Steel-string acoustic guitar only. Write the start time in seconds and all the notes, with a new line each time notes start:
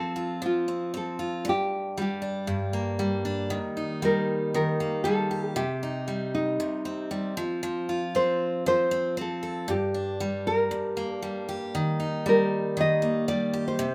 Already playing: F3 C4
0.16 F4
0.42 F3
0.68 C4
0.94 C4
1.19 F4
1.45 G2
1.98 G3
2.22 D4
2.47 G2
2.73 A#3
2.99 G3
3.25 D4
3.50 D#3
3.77 D#4
4.02 G3
4.54 D#3
4.80 A#3
5.05 G3
5.31 G4
5.56 C3
5.83 D#4
6.08 G3
6.60 C3
6.85 C4
7.11 G3
7.37 F3
7.63 F3
7.89 F4
8.15 C4
8.66 F3
8.91 C4
9.17 C4
9.43 A4
9.68 G2
9.94 D4
10.20 G3
10.71 G2
10.97 A#3
11.22 G3
11.49 G4
11.75 D#3
12.00 D#4
12.26 G3
12.77 D#3
13.02 A#3
13.28 G3
13.53 G4
13.79 C3